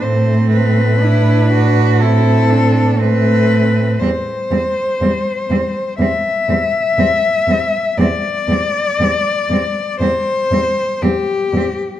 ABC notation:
X:1
M:4/4
L:1/8
Q:1/4=60
K:Ador
V:1 name="Cello"
c B3 A2 B2 | [K:C] c4 e4 | d4 c2 G2 |]
V:2 name="Cello"
C2 E F E D C2 | [K:C] C C C C C C C C | C C C C C C C C |]
V:3 name="Cello" clef=bass
A,2 D2 C2 A,2 | [K:C] G, G, G, G, G, G, G, G, | G, G, G, G, G, G, G, G, |]
V:4 name="Cello" clef=bass
A,,8 | [K:C] E,, E,, E,, E,, E,, E,, E,, E,, | E,, E,, E,, E,, E,, E,, E,, E,, |]